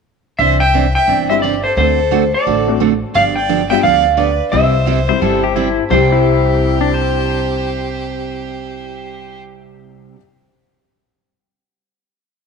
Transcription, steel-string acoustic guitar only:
0.39 C3 E3 C4 D4
0.74 C3 E3 C4 D4
1.08 C3 E3 C4 D4
1.43 C3 E3 C4 D4
1.77 D3 A3 C4 F#4 A4
2.11 D3 A3 C4 F#4 A4
2.46 D3 A3 C4 F#4 A4
2.80 D3 A3 C4 F#4 A4
3.15 D3 F3 B3 D4 G4
3.49 D3 F3 B3 D4 G4
3.83 D3 F3 B3 D4 G4
4.17 D3 F3 B3 D4 G4
4.52 C3 G3 C4 E4 G4
4.86 C3 G3 C4 E4 G4
5.21 C3 G3 C4 E4 G4
5.56 C3 G3 C4 E4 G4
5.90 C3 G3 C4 E4 G4

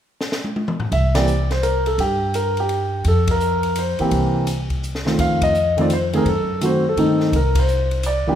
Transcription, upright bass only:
0.92 C2
1.98 G2
3.05 F2
4.00 muted upright bass stroke
4.11 C2
5.19 F2
6.25 F#2
6.97 G2
7.32 C2
8.27 muted upright bass stroke

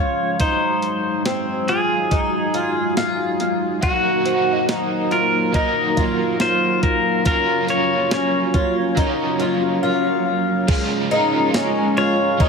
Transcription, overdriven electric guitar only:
3.81 F#3 A#3 D#4 F#4
4.25 A#3 D#4 F#4
5.52 F#3 A#3
5.58 D#4 F#4
7.25 F#3 A#3 C#4 F4
7.68 A#3 C#4 F4
8.95 F#3 A#3
9.00 C#4 F4
10.68 C#3 F3 G#3 F4 A#4
11.10 G#3 F4 A#4
12.38 F3 G#3
12.42 F4 A#4

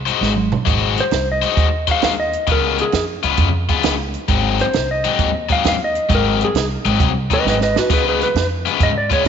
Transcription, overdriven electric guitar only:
0.06 G#3 D#4 F#4 C5
0.65 G#3 D#4 F#4 C5
1.42 G#3 D#4 F#4 C5
1.87 G#3 D#4 F#4 C5
2.47 C#3 G#3 B3 F4
3.23 C#3 G#3 B3 F4
3.69 C#3 G#3 B3 F4
4.28 G#2 F#3 C4 D#4
5.04 G#2 F#3 C4 D#4
5.49 G#2 F#3 C4 D#4
6.09 G#2 F#3 C4 D#4
6.85 G#2 F#3 C4 D#4
7.30 G#2 F#3 C4 D#4
7.90 C#3 G#3 B3 F4
8.66 C#3 G#3 B3 F4
9.10 C#3 G#3 B3 F4

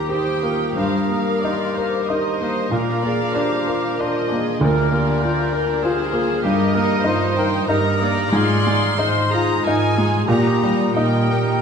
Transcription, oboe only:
Already playing: G4
0.77 A#4
2.09 C5
2.73 A#4
3.38 A#4
4.01 C5
4.63 A#4
5.22 A#4
5.83 G#4
6.42 G4
6.75 A#4
7.07 C5
7.69 A#4
8.00 A#4
8.32 G#4
8.99 C5
9.64 A#4
9.98 G#4
10.29 G4
10.97 A#4

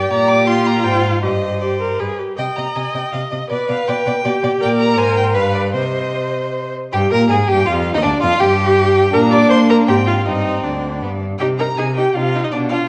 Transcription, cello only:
Already playing: G2
0.11 A#2
0.85 G#2
1.23 G2
2.00 G2
2.38 C3
2.57 C3
2.76 C3
2.94 C3
3.13 C3
3.32 C3
3.50 B2
3.68 B2
3.87 B2
4.06 B2
4.25 B2
4.43 B2
4.61 A#2
4.97 G#2
5.35 G2
5.74 C3
6.93 G2
7.12 A#2
7.31 G#2
7.50 G2
7.68 F2
7.96 D#2
8.05 D2
8.23 F2
8.41 G2
9.14 A#2
9.51 A#3
9.88 G#2
10.26 G2
10.64 D2
11.02 G2
11.40 C3
11.78 C3
12.15 C3
12.52 B2

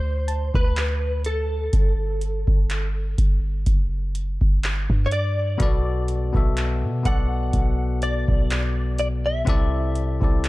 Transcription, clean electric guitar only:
Already playing: C5
0.55 B4
1.26 A4
5.06 C#5
5.12 D5
7.06 F#5
8.03 D5
8.99 D5
9.26 E5

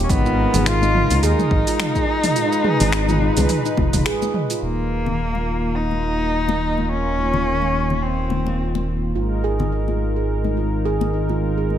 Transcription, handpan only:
0.10 D#4
0.26 F4
0.54 G#4
0.82 D#4
0.95 F4
1.23 G#4
1.51 D#4
1.67 F4
1.95 G#4
2.24 D#4
2.36 F4
2.65 G#4
2.93 D#4
3.09 F4
3.37 G#4
3.65 D#4
3.78 F4
4.06 G#4
4.34 D#4
4.51 F4
9.15 F4
9.44 G#4
9.72 D#4
9.88 F4
10.16 G#4
10.45 D#4
10.57 F4
10.85 G#4
11.14 D#4
11.30 F4
11.58 G#4

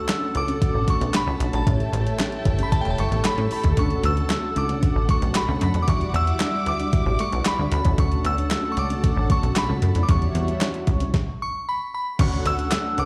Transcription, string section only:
Already playing: A4 F#5 A5
1.66 A4 E5 G5
3.77 F#5
5.88 G3 E5 D6
7.72 A4 F#5 A5
10.09 G3 E5 F#5
12.19 D3 A3 F#5

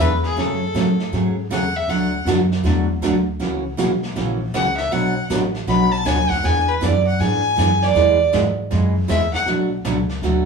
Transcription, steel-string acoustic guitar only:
0.00 E3 B3 D4 G#4
0.37 C#3 F#3 A3 C#4 G#4
0.74 C#3 F#3 A3 C#4 G#4
1.12 C#3 F#3 A3 C#4 G#4
1.50 C#3 F#3 A3 C#4 G#4
1.89 D3 F#3 A3 D4 F#4
2.26 D3 F#3 A3 D4 F#4
2.63 D3 F#3 A3 D4 F#4
3.02 D3 F#3 A3 D4 F#4
3.39 C#3 E3 A#3 C#4 F#4
3.77 C#3 E3 A#3 C#4 F#4
4.16 C#3 E3 A#3 C#4 F#4
4.54 C#3 E3 A#3 C#4 F#4
4.91 B2 F#3 B3 D4 F#4 C#5
5.30 B2 F#3 B3 D4 F#4 C#5
5.67 B2 F#3 B3 D4 F#4 C#5
6.05 B2 F#3 B3 D4 F#4 C#5
6.43 E3 B3 D4 G#4
6.81 E3 B3 D4 G#4
7.20 E3 B3 D4 G#4
7.56 E3 B3 D4 G#4
7.95 E3 G#3 B3 E4 G#4
8.33 E3 G#3 B3 E4 G#4
8.71 E3 G#3 B3 E4 G#4
9.08 E3 G#3 B3 E4 G#4
9.47 B2 F#3 A3 D4 F#4
9.85 B2 F#3 A3 D4 F#4
10.23 B2 F#3 A3 D4 F#4

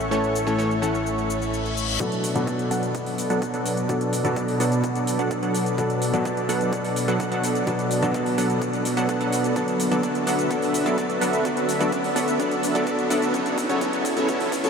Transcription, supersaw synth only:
0.11 E3 A3 C#4 A4 C#5
0.47 E3 A3 C#4 A4 C#5
0.58 E3 A3 C#4 A4 C#5
0.82 E3 A3 C#4 A4 F#5
2.00 F#3 B3 D4 A4 D5
2.36 F#3 B3 D4 A4 D5
2.47 F#3 B3 D4 A4 D5
2.71 F#3 B3 D4 A4 F#5
3.30 F#3 B3 D4 A4 F#5
3.42 F#3 B3 D4 A4 F#5
3.54 F#3 B3 D4 A4 F#5
3.89 F#3 B3 D4 A4 D5
4.25 F#3 B3 D4 A4 D5
4.36 F#3 B3 D4 A4 D5
4.60 F#3 B3 D4 A4 F#5
5.19 F#3 B3 D4 A4 F#5
5.31 F#3 B3 D4 A4 F#5
5.43 F#3 B3 D4 A4 F#5
5.78 F#3 B3 D4 A4 D5
6.14 F#3 B3 D4 A4 D5
6.25 F#3 B3 D4 A4 D5
6.49 F#3 B3 D4 A4 F#5
7.08 F#3 B3 D4 A4 F#5
7.20 F#3 B3 D4 A4 F#5
7.32 F#3 B3 D4 A4 F#5
7.67 F#3 B3 D4 A4 D5
8.03 F#3 B3 D4 A4 D5
8.14 F#3 B3 D4 A4 D5
8.38 F#3 B3 D4 A4 F#5
8.97 F#3 B3 D4 A4 F#5
9.09 F#3 B3 D4 A4 F#5
9.21 F#3 B3 D4 A4 F#5
9.56 F#3 B3 D4 A4 D5
9.92 F#3 B3 D4 A4 D5
10.03 F#3 B3 D4 A4 D5
10.27 F#3 B3 D4 A4 F#5
10.51 F#3 B3 D4 A4 D5
10.86 F#3 B3 D4 A4 D5
10.98 F#3 B3 D4 A4 D5
11.21 F#3 B3 D4 A4 F#5
11.45 F#3 B3 D4 A4 D5
11.81 F#3 B3 D4 A4 D5
11.92 F#3 B3 D4 A4 D5
12.16 F#3 B3 D4 A4 F#5
12.40 F#3 B3 D4 A4 D5
12.75 F#3 B3 D4 A4 D5
12.87 F#3 B3 D4 A4 D5
13.10 F#3 B3 D4 A4 F#5
13.34 F#3 B3 C#4 A4 C#5
13.69 F#3 B3 C#4 A4 C#5
13.81 F#3 B3 C#4 A4 C#5
14.17 F#3 B3 C#4 A4 C#5
14.29 F#3 B3 C#4 A4 C#5
14.64 F#3 B3 C#4 A4 C#5

